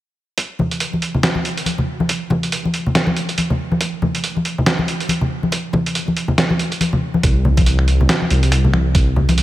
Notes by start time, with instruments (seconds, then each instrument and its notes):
0.38 kick, closed hi-hat
0.59 high conga, low conga
0.71 closed hi-hat
0.80 closed hi-hat
0.93 high conga
1.02 closed hi-hat
1.15 low conga
1.23 snare, closed hi-hat
1.35 high conga
1.45 closed hi-hat
1.57 closed hi-hat
1.66 closed hi-hat, high conga
1.78 low conga
2.00 high conga
2.09 kick, closed hi-hat
2.30 kick, high conga, low conga
2.43 closed hi-hat
2.52 closed hi-hat
2.65 high conga
2.74 closed hi-hat
2.87 low conga
2.95 snare, closed hi-hat
3.07 high conga
3.16 closed hi-hat
3.29 kick, closed hi-hat
3.38 closed hi-hat, high conga
3.50 low conga
3.72 high conga
3.81 kick, closed hi-hat
4.02 high conga, low conga
4.15 closed hi-hat
4.24 closed hi-hat
4.36 high conga
4.45 closed hi-hat
4.58 low conga
4.66 snare, closed hi-hat
4.79 high conga
4.88 closed hi-hat
5.00 closed hi-hat
5.09 closed hi-hat, high conga
5.21 low conga
5.43 high conga
5.52 kick, closed hi-hat
5.73 kick, high conga, low conga
5.86 closed hi-hat
5.95 closed hi-hat
6.08 high conga
6.17 closed hi-hat
6.28 low conga
6.38 snare, closed hi-hat
6.50 high conga
6.59 closed hi-hat
6.72 kick, closed hi-hat
6.80 closed hi-hat, high conga
6.93 low conga
7.14 high conga
7.23 detuned saw bass C2, kick, closed hi-hat
7.45 low conga
7.57 kick, closed hi-hat, high conga
7.66 closed hi-hat
7.79 finger snap
7.88 closed hi-hat
8.01 low conga
8.09 snare, closed hi-hat
8.22 high conga
8.30 detuned saw bass C2, closed hi-hat
8.43 closed hi-hat
8.52 finger snap, closed hi-hat
8.65 low conga
8.73 detuned saw bass C2, finger snap, high conga
8.95 kick, closed hi-hat
9.16 low conga
9.29 closed hi-hat, high conga
9.38 closed hi-hat